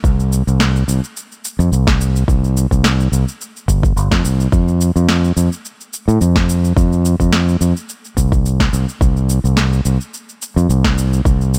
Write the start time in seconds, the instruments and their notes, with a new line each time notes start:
0.04 fingered electric bass C2, kick, cabasa
0.20 cabasa
0.33 cabasa
0.47 fingered electric bass C2, cabasa
0.60 snare, cabasa
0.76 cabasa
0.88 fingered electric bass C2, cabasa
1.04 cabasa
1.17 cabasa
1.32 cabasa
1.45 cabasa
1.59 fingered electric bass F2, cabasa
1.72 fingered electric bass C2, cabasa
1.87 kick, snare, cabasa
2.01 cabasa
2.16 cabasa
2.28 fingered electric bass C2, kick, cabasa
2.44 cabasa
2.57 cabasa
2.71 fingered electric bass C2, kick, cabasa
2.84 snare, cabasa
3.00 cabasa
3.12 fingered electric bass C2, cabasa
3.28 cabasa
3.41 cabasa
3.56 cabasa
3.68 fingered electric bass G1, kick, cabasa
3.83 kick, cabasa
3.96 fingered electric bass G1, cabasa
4.11 fingered electric bass F2, kick, snare, cabasa
4.25 fingered electric bass C2, cabasa
4.40 cabasa
4.52 fingered electric bass F2, kick, cabasa
4.68 cabasa
4.81 cabasa
4.96 fingered electric bass F2, cabasa
5.09 snare, cabasa
5.24 cabasa
5.37 fingered electric bass F2, cabasa
5.52 cabasa
5.65 cabasa
5.81 cabasa
5.93 cabasa
6.08 fingered electric bass A2, cabasa
6.21 fingered electric bass F2, cabasa
6.36 kick, snare, cabasa
6.49 cabasa
6.64 cabasa
6.77 fingered electric bass F2, kick, cabasa
6.93 cabasa
7.05 cabasa
7.20 fingered electric bass F2, kick, cabasa
7.33 snare, cabasa
7.48 cabasa
7.61 fingered electric bass F2, cabasa
7.77 cabasa
7.89 cabasa
8.05 cabasa
8.17 fingered electric bass C2, kick, cabasa
8.32 kick, cabasa
8.46 cabasa
8.60 kick, snare, cabasa
8.73 fingered electric bass C2, cabasa
8.89 cabasa
9.01 fingered electric bass C2, kick, cabasa
9.17 cabasa
9.30 cabasa
9.44 fingered electric bass C2, cabasa
9.57 snare, cabasa
9.73 cabasa
9.85 fingered electric bass C2, cabasa
10.01 cabasa
10.14 cabasa
10.29 cabasa
10.42 cabasa
10.56 fingered electric bass F2, cabasa
10.69 fingered electric bass C2, cabasa
10.84 kick, snare, cabasa
10.98 cabasa
11.13 cabasa
11.25 fingered electric bass C2, kick, cabasa
11.41 cabasa
11.54 cabasa